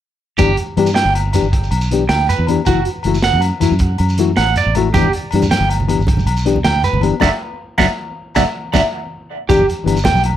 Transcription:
0.38 fingered electric bass G1, nylon-string guitar E3 B3 D4 G4, clean electric guitar G4, kick, closed hi-hat, low agogo, shekere
0.57 closed hi-hat
0.77 fingered electric bass G2, nylon-string guitar E3 B3 D4 G4, closed hi-hat, low agogo
0.86 shekere
0.95 clean electric guitar G5, snare, closed hi-hat, shekere
1.05 fingered electric bass G1
1.15 closed hi-hat, low agogo, shekere
1.33 nylon-string guitar E3 B3 D4 G4, closed hi-hat, low agogo, shekere
1.42 fingered electric bass G1, shekere
1.53 kick, closed hi-hat
1.63 shekere
1.71 fingered electric bass B1, closed hi-hat, low agogo
1.81 shekere
1.91 nylon-string guitar E3 B3 D4 G4, closed hi-hat, shekere
2.09 fingered electric bass D2, clean electric guitar G5, snare, closed hi-hat, low agogo
2.29 clean electric guitar B4, closed hi-hat, shekere
2.38 fingered electric bass E2
2.47 nylon-string guitar E3 B3 D4 G4, closed hi-hat, low agogo
2.65 fingered electric bass F#1, nylon-string guitar E3 A3 E4, clean electric guitar F#4, kick, closed hi-hat, low agogo, shekere
2.69 nylon-string guitar F#4
2.85 closed hi-hat
3.03 fingered electric bass F#1, nylon-string guitar E3 A3, closed hi-hat, low agogo
3.07 nylon-string guitar E4 F#4
3.14 shekere
3.22 clean electric guitar F#5, snare, closed hi-hat, shekere
3.33 fingered electric bass F#2
3.41 closed hi-hat, low agogo, shekere
3.60 nylon-string guitar E3 A3 E4 F#4, closed hi-hat, low agogo, shekere
3.71 fingered electric bass F#2, shekere
3.79 kick, closed hi-hat
3.98 fingered electric bass F#2, closed hi-hat, low agogo
4.09 shekere
4.18 nylon-string guitar E3 A3 E4 F#4, closed hi-hat, shekere
4.37 fingered electric bass A1, clean electric guitar F#5, snare, closed hi-hat, low agogo
4.56 clean electric guitar D5, closed hi-hat, shekere
4.66 fingered electric bass A1
4.75 nylon-string guitar E3 A3 E4 F#4, closed hi-hat, low agogo
4.94 fingered electric bass G1, nylon-string guitar E3 B3 D4 G4, clean electric guitar G4, kick, closed hi-hat, muted conga, low agogo, shekere
5.03 high conga, low conga
5.13 closed hi-hat
5.23 low conga
5.31 fingered electric bass G2, nylon-string guitar E3, closed hi-hat, low agogo
5.35 nylon-string guitar B3 D4 G4
5.42 low conga, shekere
5.51 clean electric guitar G5, snare, closed hi-hat, muted conga, shekere
5.61 fingered electric bass G1, high conga
5.69 closed hi-hat, low agogo, shekere
5.80 low conga
5.88 nylon-string guitar E3 B3 D4 G4, closed hi-hat, low agogo
5.99 fingered electric bass G1, low conga, shekere
6.07 kick, closed hi-hat, muted conga
6.17 high conga, low conga, shekere
6.26 fingered electric bass B1, closed hi-hat, low agogo
6.37 shekere
6.45 nylon-string guitar E3 B3 D4 G4, closed hi-hat, shekere
6.56 low conga
6.64 fingered electric bass D2, clean electric guitar G5, snare, closed hi-hat, muted conga, low agogo
6.75 high conga
6.84 clean electric guitar B4, closed hi-hat, low conga, shekere
6.93 fingered electric bass G1, low conga
7.01 nylon-string guitar E3 B3 D4 G4, closed hi-hat, low conga, low agogo
7.20 fingered electric bass F#1, nylon-string guitar F#3 A3 D4, clean electric guitar D5 E5 F#5, kick, snare, muted conga, low agogo, shekere
7.78 fingered electric bass F#1, nylon-string guitar F#3 A3 D4, clean electric guitar D5 E5 F#5, kick, snare, muted conga, low agogo, shekere
8.35 fingered electric bass F#1, nylon-string guitar F#3 A3 D4, clean electric guitar D5 E5 F#5, kick, snare, muted conga, low agogo, shekere
8.73 fingered electric bass F#1, nylon-string guitar F#3 A3 D4, clean electric guitar D5 E5 F#5, kick, snare, muted conga, low agogo, shekere
9.49 fingered electric bass G1, nylon-string guitar E3 B3 D4 G4, clean electric guitar G4, kick, closed hi-hat, muted conga, low agogo, shekere
9.59 high conga, low conga
9.69 closed hi-hat, shekere
9.84 fingered electric bass G1, nylon-string guitar E3 B3 D4 G4, closed hi-hat, low agogo, shekere
9.97 shekere
10.05 clean electric guitar G5, kick, snare, closed hi-hat, muted conga, low conga, shekere
10.14 fingered electric bass B1, high conga, shekere
10.24 closed hi-hat, low agogo
10.33 fingered electric bass G1

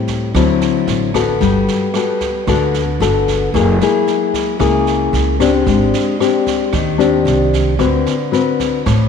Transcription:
Already playing: nylon-string guitar A2 G3 C4 E4
0.08 kick, snare
0.34 upright bass D2, nylon-string guitar D3 F#3 C4 E4, kick, cross-stick, snare
0.61 snare
0.87 upright bass A1, snare
1.14 nylon-string guitar B3 F#4 A4, kick, cross-stick, snare
1.41 upright bass G1, nylon-string guitar G3, kick, snare
1.68 snare
1.94 nylon-string guitar B3 F#4 A4, cross-stick, snare
2.21 kick, snare
2.47 upright bass D2, nylon-string guitar D3 B3 F#4 A4, kick, cross-stick, snare
2.74 snare
3.00 upright bass G1, nylon-string guitar B3 F#4 A4, snare
3.28 kick, snare
3.54 upright bass F#1, nylon-string guitar F#3 A#3 E4 G#4, kick, cross-stick, snare
3.81 nylon-string guitar A#3 E4 G#4, snare
4.07 snare
4.34 kick, snare
4.59 upright bass C#2, nylon-string guitar C#3 A#3 E4 G#4, kick, cross-stick, snare
4.87 snare
5.13 upright bass C#2, snare
5.40 nylon-string guitar C4 D4 G4, kick, cross-stick, snare
5.66 upright bass G#1, nylon-string guitar G#3, kick, snare
5.94 snare
6.20 nylon-string guitar C4 D4 G4, cross-stick, snare
6.47 kick, snare
6.73 upright bass D#2, nylon-string guitar D#3, kick, cross-stick, snare
6.98 nylon-string guitar C4 D4 G4, snare
7.25 upright bass C2, snare
7.53 kick, snare
7.79 upright bass D2, nylon-string guitar D3 C4 F#4 B4, kick, cross-stick, snare
8.06 snare
8.32 nylon-string guitar C4 F#4 B4, snare
8.60 kick, snare
8.86 upright bass A1, nylon-string guitar A2, kick, cross-stick, snare

